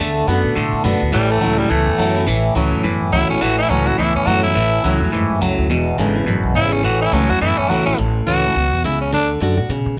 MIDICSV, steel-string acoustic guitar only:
0, 0, Header, 1, 2, 480
1, 0, Start_track
1, 0, Key_signature, 3, "major"
1, 0, Tempo, 285442
1, 1904, Time_signature, 4, 2, 24, 8
1, 16804, End_track
2, 0, Start_track
2, 0, Title_t, "Steel-string acoustic guitar"
2, 0, Program_c, 0, 25
2, 0, Note_on_c, 0, 50, 91
2, 435, Note_off_c, 0, 50, 0
2, 455, Note_on_c, 0, 50, 76
2, 467, Note_on_c, 0, 57, 91
2, 482, Note_on_c, 0, 62, 89
2, 490, Note_on_c, 0, 66, 96
2, 920, Note_off_c, 0, 50, 0
2, 926, Note_off_c, 0, 57, 0
2, 933, Note_off_c, 0, 62, 0
2, 937, Note_off_c, 0, 66, 0
2, 947, Note_on_c, 0, 45, 84
2, 1411, Note_on_c, 0, 50, 95
2, 1427, Note_on_c, 0, 57, 94
2, 1442, Note_on_c, 0, 62, 88
2, 1450, Note_on_c, 0, 66, 100
2, 1680, Note_off_c, 0, 66, 0
2, 1690, Note_off_c, 0, 50, 0
2, 1698, Note_off_c, 0, 57, 0
2, 1700, Note_on_c, 0, 66, 54
2, 1706, Note_off_c, 0, 62, 0
2, 1738, Note_on_c, 0, 62, 46
2, 1867, Note_off_c, 0, 45, 0
2, 1892, Note_off_c, 0, 66, 0
2, 1904, Note_on_c, 0, 45, 97
2, 1911, Note_off_c, 0, 62, 0
2, 2370, Note_on_c, 0, 52, 80
2, 2387, Note_on_c, 0, 57, 83
2, 2396, Note_on_c, 0, 61, 94
2, 2405, Note_on_c, 0, 64, 103
2, 2639, Note_off_c, 0, 64, 0
2, 2650, Note_off_c, 0, 52, 0
2, 2658, Note_off_c, 0, 57, 0
2, 2659, Note_on_c, 0, 64, 64
2, 2663, Note_off_c, 0, 61, 0
2, 2698, Note_on_c, 0, 61, 45
2, 2825, Note_off_c, 0, 45, 0
2, 2852, Note_off_c, 0, 64, 0
2, 2870, Note_on_c, 0, 40, 80
2, 2871, Note_off_c, 0, 61, 0
2, 3346, Note_on_c, 0, 52, 86
2, 3357, Note_on_c, 0, 57, 86
2, 3372, Note_on_c, 0, 61, 92
2, 3383, Note_on_c, 0, 64, 87
2, 3609, Note_off_c, 0, 64, 0
2, 3617, Note_off_c, 0, 52, 0
2, 3623, Note_off_c, 0, 57, 0
2, 3629, Note_on_c, 0, 64, 59
2, 3631, Note_off_c, 0, 61, 0
2, 3663, Note_on_c, 0, 61, 50
2, 3788, Note_off_c, 0, 40, 0
2, 3817, Note_off_c, 0, 64, 0
2, 3829, Note_on_c, 0, 45, 100
2, 3834, Note_off_c, 0, 61, 0
2, 4293, Note_on_c, 0, 52, 89
2, 4308, Note_on_c, 0, 57, 93
2, 4321, Note_on_c, 0, 61, 88
2, 4329, Note_on_c, 0, 64, 92
2, 4748, Note_off_c, 0, 45, 0
2, 4759, Note_off_c, 0, 52, 0
2, 4766, Note_off_c, 0, 57, 0
2, 4773, Note_off_c, 0, 61, 0
2, 4777, Note_off_c, 0, 64, 0
2, 4787, Note_on_c, 0, 40, 76
2, 5255, Note_on_c, 0, 52, 77
2, 5269, Note_on_c, 0, 57, 90
2, 5282, Note_on_c, 0, 61, 90
2, 5291, Note_on_c, 0, 64, 93
2, 5519, Note_off_c, 0, 64, 0
2, 5532, Note_off_c, 0, 52, 0
2, 5539, Note_off_c, 0, 57, 0
2, 5539, Note_on_c, 0, 64, 56
2, 5545, Note_off_c, 0, 61, 0
2, 5578, Note_on_c, 0, 61, 47
2, 5706, Note_off_c, 0, 40, 0
2, 5732, Note_off_c, 0, 64, 0
2, 5737, Note_on_c, 0, 45, 94
2, 5751, Note_off_c, 0, 61, 0
2, 6218, Note_on_c, 0, 52, 90
2, 6231, Note_on_c, 0, 57, 81
2, 6243, Note_on_c, 0, 61, 90
2, 6254, Note_on_c, 0, 64, 94
2, 6488, Note_off_c, 0, 64, 0
2, 6493, Note_off_c, 0, 52, 0
2, 6500, Note_off_c, 0, 57, 0
2, 6505, Note_off_c, 0, 61, 0
2, 6508, Note_on_c, 0, 64, 63
2, 6546, Note_on_c, 0, 61, 50
2, 6661, Note_off_c, 0, 45, 0
2, 6696, Note_off_c, 0, 64, 0
2, 6712, Note_on_c, 0, 40, 85
2, 6715, Note_off_c, 0, 61, 0
2, 7185, Note_on_c, 0, 52, 86
2, 7197, Note_on_c, 0, 57, 83
2, 7210, Note_on_c, 0, 61, 87
2, 7222, Note_on_c, 0, 64, 90
2, 7446, Note_off_c, 0, 64, 0
2, 7456, Note_off_c, 0, 52, 0
2, 7462, Note_off_c, 0, 57, 0
2, 7466, Note_on_c, 0, 64, 58
2, 7469, Note_off_c, 0, 61, 0
2, 7505, Note_on_c, 0, 61, 49
2, 7628, Note_off_c, 0, 40, 0
2, 7655, Note_off_c, 0, 64, 0
2, 7669, Note_on_c, 0, 45, 96
2, 7674, Note_off_c, 0, 61, 0
2, 8140, Note_on_c, 0, 52, 82
2, 8155, Note_on_c, 0, 57, 89
2, 8171, Note_on_c, 0, 61, 85
2, 8179, Note_on_c, 0, 64, 93
2, 8405, Note_off_c, 0, 64, 0
2, 8413, Note_off_c, 0, 52, 0
2, 8421, Note_off_c, 0, 57, 0
2, 8425, Note_on_c, 0, 64, 60
2, 8429, Note_off_c, 0, 61, 0
2, 8464, Note_on_c, 0, 61, 47
2, 8586, Note_off_c, 0, 45, 0
2, 8614, Note_off_c, 0, 64, 0
2, 8633, Note_off_c, 0, 61, 0
2, 8649, Note_on_c, 0, 44, 84
2, 9096, Note_off_c, 0, 44, 0
2, 9110, Note_on_c, 0, 42, 95
2, 9566, Note_off_c, 0, 42, 0
2, 9599, Note_on_c, 0, 40, 94
2, 10060, Note_on_c, 0, 50, 87
2, 10081, Note_on_c, 0, 56, 83
2, 10088, Note_on_c, 0, 59, 93
2, 10100, Note_on_c, 0, 64, 97
2, 10331, Note_off_c, 0, 64, 0
2, 10333, Note_off_c, 0, 50, 0
2, 10343, Note_off_c, 0, 56, 0
2, 10347, Note_off_c, 0, 59, 0
2, 10351, Note_on_c, 0, 64, 62
2, 10392, Note_on_c, 0, 59, 50
2, 10511, Note_off_c, 0, 40, 0
2, 10536, Note_off_c, 0, 64, 0
2, 10557, Note_off_c, 0, 59, 0
2, 10557, Note_on_c, 0, 42, 86
2, 11009, Note_off_c, 0, 42, 0
2, 11035, Note_on_c, 0, 44, 90
2, 11488, Note_off_c, 0, 44, 0
2, 11508, Note_on_c, 0, 45, 99
2, 11974, Note_on_c, 0, 52, 83
2, 11992, Note_on_c, 0, 57, 85
2, 12003, Note_on_c, 0, 61, 99
2, 12013, Note_on_c, 0, 64, 103
2, 12242, Note_off_c, 0, 64, 0
2, 12250, Note_off_c, 0, 52, 0
2, 12259, Note_off_c, 0, 57, 0
2, 12262, Note_on_c, 0, 64, 58
2, 12264, Note_off_c, 0, 61, 0
2, 12305, Note_on_c, 0, 61, 52
2, 12425, Note_off_c, 0, 45, 0
2, 12452, Note_off_c, 0, 64, 0
2, 12467, Note_on_c, 0, 40, 76
2, 12473, Note_off_c, 0, 61, 0
2, 12946, Note_on_c, 0, 52, 84
2, 12958, Note_on_c, 0, 57, 94
2, 12967, Note_on_c, 0, 61, 93
2, 12983, Note_on_c, 0, 64, 95
2, 13204, Note_off_c, 0, 64, 0
2, 13216, Note_off_c, 0, 52, 0
2, 13222, Note_off_c, 0, 57, 0
2, 13224, Note_on_c, 0, 64, 64
2, 13226, Note_off_c, 0, 61, 0
2, 13264, Note_on_c, 0, 61, 45
2, 13385, Note_off_c, 0, 40, 0
2, 13413, Note_off_c, 0, 64, 0
2, 13424, Note_on_c, 0, 45, 98
2, 13432, Note_off_c, 0, 61, 0
2, 13902, Note_on_c, 0, 52, 86
2, 13915, Note_on_c, 0, 57, 89
2, 13930, Note_on_c, 0, 61, 93
2, 13939, Note_on_c, 0, 64, 101
2, 14163, Note_off_c, 0, 64, 0
2, 14174, Note_off_c, 0, 52, 0
2, 14180, Note_off_c, 0, 57, 0
2, 14183, Note_on_c, 0, 64, 57
2, 14188, Note_off_c, 0, 61, 0
2, 14217, Note_on_c, 0, 61, 48
2, 14343, Note_off_c, 0, 45, 0
2, 14372, Note_off_c, 0, 64, 0
2, 14386, Note_on_c, 0, 47, 81
2, 14389, Note_off_c, 0, 61, 0
2, 14844, Note_off_c, 0, 47, 0
2, 14870, Note_on_c, 0, 49, 95
2, 15326, Note_off_c, 0, 49, 0
2, 15343, Note_on_c, 0, 50, 103
2, 15794, Note_off_c, 0, 50, 0
2, 15814, Note_on_c, 0, 50, 85
2, 15825, Note_on_c, 0, 57, 80
2, 15841, Note_on_c, 0, 62, 86
2, 15848, Note_on_c, 0, 66, 97
2, 16075, Note_off_c, 0, 66, 0
2, 16089, Note_off_c, 0, 50, 0
2, 16095, Note_off_c, 0, 57, 0
2, 16095, Note_on_c, 0, 66, 60
2, 16103, Note_off_c, 0, 62, 0
2, 16128, Note_on_c, 0, 62, 52
2, 16288, Note_off_c, 0, 66, 0
2, 16304, Note_off_c, 0, 62, 0
2, 16307, Note_on_c, 0, 49, 93
2, 16764, Note_off_c, 0, 49, 0
2, 16804, End_track
0, 0, End_of_file